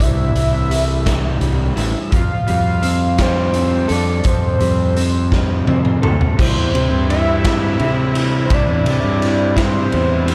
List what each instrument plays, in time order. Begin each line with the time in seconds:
Already playing: clean electric guitar E3 G3 E4
0.00 fingered electric bass C2, clean electric guitar C3, analog synth lead E5, kick, closed hi-hat
0.35 fingered electric bass C2, clean electric guitar E3, closed hi-hat
0.70 clean electric guitar G3, closed hi-hat
1.06 clean electric guitar E3, kick, snare, closed hi-hat
1.41 fingered electric bass C2, clean electric guitar G3, closed hi-hat
1.76 fingered electric bass A1, clean electric guitar E4, closed hi-hat
2.11 fingered electric bass F2, clean electric guitar F3, kick, closed hi-hat
2.16 analog synth lead F5
2.47 fingered electric bass F2, clean electric guitar G3, closed hi-hat
2.82 clean electric guitar C4, closed hi-hat
3.18 clean electric guitar G3, analog synth lead C5, kick, snare, closed hi-hat
3.54 clean electric guitar C4, closed hi-hat
3.88 fingered electric bass F2, clean electric guitar A4, closed hi-hat
3.92 analog synth lead D5
4.24 fingered electric bass F2, clean electric guitar F3, analog synth lead C5, kick, closed hi-hat
4.60 fingered electric bass F2, clean electric guitar G3, closed hi-hat
4.96 clean electric guitar C4, closed hi-hat
5.32 clean electric guitar G3, kick, snare
5.67 fingered electric bass F2, clean electric guitar C4, high tom
5.85 mid tom
6.02 fingered electric bass D2, clean electric guitar A4, mid tom
6.21 floor tom
6.36 fingered electric bass C2, clean electric guitar C3 E3 G3 C4 E4, trumpet E4, analog synth lead C5, kick, crash
6.57 fingered electric bass E2
6.74 fingered electric bass C3, clean electric guitar G3 C4 E4, ride
6.92 fingered electric bass G2
7.10 analog synth lead E5, ride
7.45 clean electric guitar C3 E3 G3 C4 E4, kick, snare, ride
7.79 fingered electric bass C3, clean electric guitar E3 G3 C4 E4, ride
8.15 clean electric guitar G3 C4 E4, ride
8.45 analog synth lead C5
8.50 fingered electric bass C2, clean electric guitar C3 E3 G3 C4 E4, analog synth lead D5, kick, ride
8.68 fingered electric bass E2
8.85 fingered electric bass C3, clean electric guitar G3 C4 E4, ride
9.04 fingered electric bass G2
9.22 ride
9.56 clean electric guitar C3 E3 G3 C4 E4, analog synth lead C5, kick, snare, ride
9.91 fingered electric bass E2, clean electric guitar E3 G3 C4 E4, ride
10.26 clean electric guitar G3 C4 E4, ride